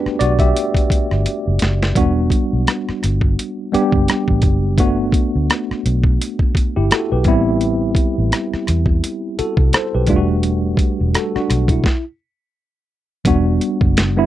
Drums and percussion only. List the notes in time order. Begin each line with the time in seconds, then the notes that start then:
0.06 cross-stick
0.20 cross-stick, closed hi-hat
0.39 kick, closed hi-hat
0.56 closed hi-hat
0.75 kick, closed hi-hat
0.90 kick, closed hi-hat
1.11 cross-stick
1.26 closed hi-hat
1.59 snare, closed hi-hat
1.83 snare
1.95 kick, closed hi-hat
2.30 kick, closed hi-hat
2.67 cross-stick, closed hi-hat
2.89 cross-stick
3.03 cross-stick, closed hi-hat
3.21 kick
3.39 closed hi-hat
3.74 closed hi-hat
3.92 kick
4.08 cross-stick, closed hi-hat
4.28 kick
4.42 kick, closed hi-hat
4.78 kick, closed hi-hat
5.12 kick, closed hi-hat
5.50 cross-stick, closed hi-hat
5.71 cross-stick
5.86 closed hi-hat
6.04 kick
6.21 closed hi-hat
6.39 kick
6.55 kick, closed hi-hat
6.91 cross-stick, closed hi-hat
7.24 kick, closed hi-hat
7.61 closed hi-hat
7.95 kick, closed hi-hat
8.32 cross-stick, closed hi-hat
8.54 cross-stick
8.67 cross-stick, closed hi-hat
8.86 kick
9.04 closed hi-hat
9.39 closed hi-hat
9.57 kick
9.73 cross-stick, closed hi-hat
10.07 kick, closed hi-hat
10.43 closed hi-hat
10.77 kick, closed hi-hat
11.15 cross-stick, closed hi-hat
11.36 cross-stick
11.50 cross-stick, closed hi-hat
11.68 kick, closed hi-hat
11.84 kick, snare
13.25 kick, closed hi-hat
13.61 closed hi-hat
13.81 kick
13.97 snare, closed hi-hat